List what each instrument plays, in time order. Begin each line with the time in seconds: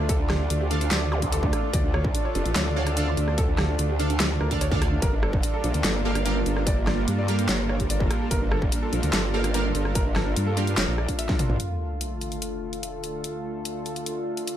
Already playing: wobble bass D2, supersaw synth A3 D4 F4, ambient pad F4 A4 D5
0.09 grand piano A4, kick, closed hi-hat
0.19 grand piano D4
0.30 wobble bass D2, grand piano G4, cross-stick, snare
0.40 grand piano D4
0.50 wobble bass D2, grand piano D4, closed hi-hat
0.61 grand piano G4
0.71 grand piano D4, synth stab D4 A4 F5, closed hi-hat
0.81 grand piano D4, closed hi-hat
0.91 wobble bass D2, grand piano G4, snare, clap, closed hi-hat
1.02 grand piano D4
1.12 grand piano G4, cross-stick, zap
1.22 grand piano D4, kick, closed hi-hat
1.32 grand piano A4, closed hi-hat
1.43 grand piano D4, kick
1.53 grand piano D4, cross-stick, closed hi-hat
1.63 grand piano D4
1.74 wobble bass D2, grand piano D5, kick, closed hi-hat
1.84 grand piano D4
1.94 grand piano C#5, cross-stick
2.04 grand piano D4, kick
2.15 grand piano D4, closed hi-hat
2.25 grand piano C#5
2.35 wobble bass F1, grand piano D4, closed hi-hat
2.45 wobble bass A1, grand piano D4, closed hi-hat
2.56 wobble bass D2, grand piano C#5, snare, clap, closed hi-hat
2.66 grand piano D4
2.76 synth stab D4 A4 F5, grand piano C#5
2.87 grand piano D4, cross-stick, closed hi-hat
2.97 synth stab D4 A4 F5, grand piano D5, closed hi-hat
3.07 grand piano D4
3.17 wobble bass D2, grand piano D4, closed hi-hat
3.28 grand piano D4, cross-stick
3.38 grand piano A4, kick, closed hi-hat
3.48 grand piano D4
3.58 wobble bass D2, grand piano G4, cross-stick, snare
3.69 grand piano D4
3.79 wobble bass D2, grand piano D4, closed hi-hat
3.89 grand piano G4
4.00 grand piano D4, synth stab D4 A4 F5, closed hi-hat
4.10 grand piano D4, closed hi-hat
4.20 wobble bass D2, grand piano G4, snare, clap, closed hi-hat
4.30 grand piano D4
4.41 wobble bass D2, grand piano A#4, cross-stick
4.51 synth stab D4 A4 F5, grand piano D4, kick, closed hi-hat
4.61 wobble bass D2, grand piano C#5, closed hi-hat
4.72 grand piano D4, synth stab D4 A4 F5, kick
4.82 grand piano D4, cross-stick, closed hi-hat
4.92 grand piano D4
5.02 wobble bass G1, supersaw synth G3 F4 A4 A#4, ambient pad F4, grand piano A#4, kick, closed hi-hat
5.13 grand piano D4
5.22 ambient pad A#3, grand piano A4, cross-stick
5.33 grand piano D4, kick
5.43 grand piano D4, closed hi-hat
5.54 grand piano A4
5.64 wobble bass A#1, grand piano D4, closed hi-hat
5.74 wobble bass D2, grand piano D4, closed hi-hat
5.84 wobble bass G1, grand piano A4, snare, clap, closed hi-hat
5.95 grand piano D4
6.05 synth stab A#3 G4 F5, grand piano A4
6.15 grand piano D4, cross-stick, closed hi-hat
6.26 synth stab A#3 G4 F5, grand piano A#4, closed hi-hat
6.36 grand piano D4
6.46 wobble bass G1, grand piano D4, closed hi-hat
6.57 grand piano D4, cross-stick
6.67 grand piano D5, kick, closed hi-hat
6.77 grand piano G4
6.87 wobble bass G1, grand piano D5, cross-stick, snare
6.98 grand piano G4
7.08 wobble bass G2, grand piano G4, closed hi-hat
7.18 grand piano D5
7.28 synth stab A#3 G4 F5, grand piano G4, closed hi-hat
7.39 grand piano G4, closed hi-hat
7.49 wobble bass G1, grand piano C#5, snare, clap, closed hi-hat
7.59 grand piano G4
7.69 grand piano C#5, cross-stick
7.80 grand piano G4, kick, closed hi-hat
7.90 grand piano D5, closed hi-hat
8.00 grand piano G4, kick
8.11 grand piano G4, cross-stick, closed hi-hat
8.21 grand piano G4
8.31 wobble bass G1, grand piano A#4, kick, closed hi-hat
8.41 grand piano D4
8.52 grand piano A4, cross-stick
8.62 grand piano D4, kick
8.72 grand piano D4, closed hi-hat
8.83 grand piano A4
8.93 wobble bass A#1, grand piano D4, closed hi-hat
9.03 wobble bass D2, grand piano D4, closed hi-hat
9.13 wobble bass G1, grand piano A4, snare, clap, closed hi-hat
9.24 grand piano D4
9.34 synth stab A#3 G4 F5, grand piano A4
9.44 grand piano D4, cross-stick, closed hi-hat
9.54 synth stab A#3 G4 F5, grand piano A#4, closed hi-hat
9.65 grand piano D4
9.75 wobble bass G1, grand piano D4, closed hi-hat
9.85 grand piano D4, cross-stick
9.95 grand piano A#4, kick, closed hi-hat
10.06 grand piano D4
10.16 wobble bass G1, grand piano A4, cross-stick, snare
10.26 grand piano D4
10.36 wobble bass G2, grand piano D4, closed hi-hat
10.47 grand piano A4
10.57 synth stab A#3 G4 F5, grand piano D4, closed hi-hat
10.67 grand piano D4, closed hi-hat
10.78 wobble bass F1, grand piano C#5, snare, clap, closed hi-hat
10.88 wobble bass A#1, grand piano D4
10.98 grand piano D5, cross-stick
11.08 grand piano D4, kick, closed hi-hat
11.19 grand piano E5, closed hi-hat
11.29 grand piano D4, kick, snare
11.39 grand piano D4, closed hi-hat, mid tom
11.50 wobble bass A#1, grand piano D4, mid tom
11.60 supersaw synth D2 D3 A3 F4 A4, closed hi-hat, sub drop
11.90 ambient pad A4 D5
12.01 closed hi-hat
12.21 closed hi-hat
12.32 closed hi-hat
12.42 closed hi-hat
12.73 closed hi-hat
12.83 closed hi-hat
13.04 closed hi-hat
13.24 closed hi-hat
13.65 closed hi-hat
13.86 closed hi-hat
13.96 closed hi-hat
14.06 closed hi-hat
14.37 closed hi-hat
14.47 closed hi-hat